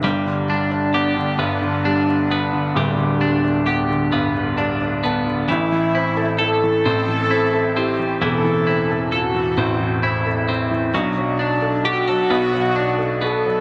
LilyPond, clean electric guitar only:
\new Staff \with { instrumentName = "Clean electric guitar" } { \time 6/8 \key g \major \tempo 4. = 44 g8 d'8 g'8 b8 d'8 b8 | g8 d'8 g'8 b8 d'8 b8 | e8 e'8 a'8 c'8 e'8 c'8 | e8 e'8 a'8 c'8 e'8 c'8 |
fis8 d'8 g'16 a'16 b8 d'8 b8 | }